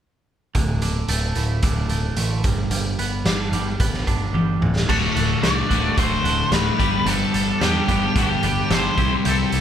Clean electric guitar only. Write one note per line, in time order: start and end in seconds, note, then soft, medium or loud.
0.55 1.90 D2 medium
0.82 1.62 D3 medium
1.09 1.89 A3 medium
1.36 2.16 A2 medium
1.63 2.45 D3 medium
1.90 2.45 A3 medium
2.17 2.44 A2 medium
2.45 2.70 G2 medium
2.71 4.07 G2 medium
2.99 3.79 B3 medium
3.26 4.06 D4 medium
3.53 4.33 G3 medium
3.80 4.62 B3 medium
4.07 4.62 D4 medium
4.34 4.62 G3 medium
4.62 4.87 D2 medium
4.88 5.43 D2 medium
4.88 5.41 A2 medium
4.88 5.16 D3 medium
4.88 5.15 A3 medium
4.88 5.14 F#4 medium
5.15 5.42 D3 soft
5.15 5.42 A3 medium
5.15 5.42 F#4 medium
5.42 5.69 A2 medium
5.42 5.69 D3 medium
5.42 5.69 A3 medium
5.42 5.68 F#4 medium
5.69 6.25 D2 medium
5.69 5.96 A2 medium
5.69 5.96 D3 medium
5.69 5.97 A3 medium
5.69 5.97 F#4 medium
5.97 6.24 A2 medium
5.97 6.24 D3 medium
5.97 6.23 A3 medium
5.97 6.23 F#4 medium
6.24 6.79 D2 medium
6.24 6.50 A2 medium
6.24 6.51 D3 medium
6.24 6.52 A3 medium
6.24 6.52 F#4 medium
6.51 6.77 A2 medium
6.51 6.78 D3 medium
6.51 6.78 A3 medium
6.51 6.78 F#4 medium
6.78 7.04 G2 medium
6.78 7.04 D3 medium
6.78 7.06 G3 medium
6.78 7.05 B3 medium
6.78 7.06 D4 medium
6.78 7.07 G4 medium
7.05 7.61 G2 medium
7.05 7.61 D3 medium
7.05 7.35 G3 medium
7.05 7.34 B3 medium
7.05 7.33 D4 medium
7.05 7.33 G4 medium
7.34 7.59 G3 medium
7.34 7.60 B3 soft
7.34 7.60 D4 medium
7.34 7.62 G4 medium
7.60 7.89 G3 medium
7.60 7.88 B3 medium
7.60 7.87 D4 medium
7.60 7.88 G4 medium
7.88 8.44 G2 medium
7.88 8.44 D3 medium
7.88 8.15 G3 medium
7.88 8.15 B3 medium
7.88 8.16 D4 medium
7.88 8.17 G4 medium
8.16 8.43 G3 medium
8.16 8.43 B3 medium
8.16 8.42 D4 medium
8.16 8.42 G4 medium
8.43 8.97 G2 medium
8.43 8.97 D3 medium
8.43 8.69 G3 medium
8.43 8.70 B3 medium
8.43 8.71 D4 medium
8.43 8.71 G4 medium
8.70 8.96 G3 medium
8.70 8.96 B3 medium
8.70 8.97 D4 medium
8.70 8.97 G4 medium
8.98 9.23 C3 medium
8.98 9.23 G3 medium
8.98 9.25 C4 medium
8.98 9.24 E4 medium
8.98 9.24 G4 medium
8.98 9.26 C5 medium
9.24 9.61 C3 medium
9.24 9.61 G3 medium
9.24 9.53 C4 medium
9.24 9.52 E4 medium
9.24 9.51 G4 loud
9.24 9.51 C5 loud
9.52 9.61 C4 medium
9.52 9.61 E4 medium
9.52 9.61 G4 medium
9.52 9.61 C5 medium